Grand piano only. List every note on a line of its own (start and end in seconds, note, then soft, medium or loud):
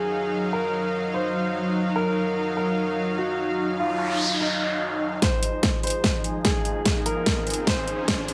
0.00 0.45 G#4 medium
0.53 1.06 A#4 medium
1.14 1.88 C5 medium
1.96 2.49 A#4 medium
2.57 3.10 A#4 medium
3.18 3.72 F#4 medium
3.79 4.33 F4 medium
4.41 5.14 D#4 medium
5.22 5.76 C5 medium
5.83 6.37 C5 medium
6.45 6.98 G#4 medium
7.06 7.59 A#4 medium
7.67 8.34 C5 medium